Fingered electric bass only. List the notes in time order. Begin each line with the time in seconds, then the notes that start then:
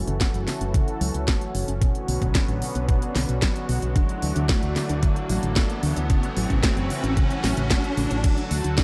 0.07 F#1
0.34 F#1
0.61 F#1
1.01 C#2
1.14 C#2
1.55 F#1
1.68 F#1
2.08 B1
2.22 B1
2.48 A1
2.75 B1
3.15 B1
3.29 B1
3.69 B1
3.82 B1
4.23 D2
4.36 D2
4.63 D2
4.90 D2
5.29 A1
5.43 A1
5.83 D2
5.97 D2
6.37 A1
6.50 A1
6.77 F#1
7.03 A1
7.44 A1
7.57 A1
7.97 A1
8.11 A1
8.51 D2
8.65 D2